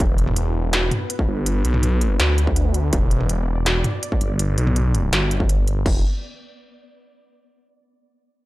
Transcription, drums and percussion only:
0.00 kick loud
0.18 closed hi-hat soft
0.27 mid tom medium
0.36 closed hi-hat medium
0.73 snare loud
0.73 closed hi-hat medium
0.91 closed hi-hat soft
0.91 mid tom medium
1.10 closed hi-hat medium
1.19 kick medium
1.46 closed hi-hat medium
1.65 closed hi-hat soft
1.74 mid tom medium
1.83 closed hi-hat medium
1.83 mid tom soft
2.01 closed hi-hat soft
2.20 snare loud
2.20 closed hi-hat medium
2.38 closed hi-hat soft
2.47 kick medium
2.56 closed hi-hat medium
2.74 closed hi-hat soft
2.93 kick loud
2.93 closed hi-hat medium
3.11 closed hi-hat soft
3.21 mid tom medium
3.29 closed hi-hat medium
3.66 snare loud
3.66 closed hi-hat medium
3.84 closed hi-hat soft
3.84 mid tom medium
4.03 closed hi-hat medium
4.12 kick medium
4.21 closed hi-hat soft
4.39 closed hi-hat medium
4.58 closed hi-hat soft
4.67 mid tom medium
4.76 closed hi-hat medium
4.76 mid tom soft
4.95 closed hi-hat soft
5.13 snare loud
5.13 closed hi-hat medium
5.31 closed hi-hat soft
5.40 kick medium
5.49 closed hi-hat medium
5.68 closed hi-hat soft
5.86 kick loud
5.86 crash medium

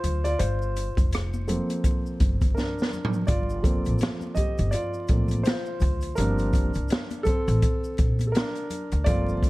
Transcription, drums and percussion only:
0.04 closed hi-hat medium
0.04 low conga medium
0.04 shaker soft
0.25 closed hi-hat soft
0.25 shaker soft
0.40 closed hi-hat medium
0.40 shaker medium
0.62 shaker soft
0.76 closed hi-hat medium
0.76 shaker soft
0.97 kick medium
0.97 closed hi-hat soft
0.97 shaker soft
1.12 cross-stick loud
1.12 closed hi-hat medium
1.12 shaker medium
1.34 high conga medium
1.34 shaker soft
1.48 closed hi-hat medium
1.48 low conga medium
1.48 shaker medium
1.70 closed hi-hat soft
1.70 high conga soft
1.70 shaker soft
1.84 kick medium
1.84 closed hi-hat medium
1.84 shaker medium
2.06 shaker soft
2.20 kick medium
2.20 closed hi-hat medium
2.20 low conga medium
2.20 shaker soft
2.41 kick medium
2.41 closed hi-hat soft
2.41 high conga medium
2.41 shaker soft
2.57 snare medium
2.57 shaker medium
2.79 snare medium
2.79 shaker soft
2.93 low conga medium
2.93 shaker soft
3.05 floor tom medium
3.13 shaker soft
3.28 kick loud
3.28 closed hi-hat medium
3.28 shaker medium
3.50 shaker soft
3.64 kick medium
3.64 closed hi-hat medium
3.64 high conga soft
3.64 shaker soft
3.85 closed hi-hat soft
3.85 shaker soft
3.99 closed hi-hat medium
3.99 shaker medium
4.03 snare loud
4.21 high conga medium
4.21 shaker soft
4.35 kick medium
4.35 closed hi-hat medium
4.35 low conga medium
4.35 shaker medium
4.58 closed hi-hat soft
4.58 high conga soft
4.58 shaker soft
4.72 closed hi-hat medium
4.72 shaker medium
4.94 shaker soft
5.08 kick medium
5.08 closed hi-hat medium
5.08 shaker soft
5.28 closed hi-hat soft
5.28 high conga medium
5.28 shaker soft
5.45 snare loud
5.45 closed hi-hat medium
5.45 shaker medium
5.66 shaker soft
5.80 kick medium
5.80 closed hi-hat medium
5.80 low conga medium
5.80 shaker soft
6.01 closed hi-hat soft
6.01 shaker soft
6.16 closed hi-hat medium
6.16 shaker medium
6.38 closed hi-hat soft
6.38 shaker soft
6.53 kick medium
6.53 closed hi-hat medium
6.53 high conga medium
6.53 shaker soft
6.74 closed hi-hat soft
6.74 shaker soft
6.88 closed hi-hat medium
6.88 shaker medium
6.92 snare loud
7.11 closed hi-hat soft
7.11 high conga medium
7.11 shaker soft
7.25 kick medium
7.25 closed hi-hat medium
7.25 low conga medium
7.25 shaker medium
7.48 closed hi-hat soft
7.48 high conga soft
7.48 shaker soft
7.62 kick medium
7.62 closed hi-hat medium
7.62 shaker medium
7.84 shaker soft
7.98 kick medium
7.98 closed hi-hat medium
7.98 shaker soft
8.19 closed hi-hat soft
8.19 high conga medium
8.19 shaker soft
8.35 snare loud
8.35 closed hi-hat medium
8.35 shaker medium
8.55 closed hi-hat soft
8.55 shaker soft
8.70 closed hi-hat medium
8.70 low conga medium
8.70 shaker soft
8.92 closed hi-hat soft
8.92 shaker soft
9.06 kick loud
9.06 closed hi-hat medium
9.06 shaker medium
9.28 shaker soft
9.43 kick medium
9.43 closed hi-hat medium
9.43 high conga medium
9.43 shaker soft

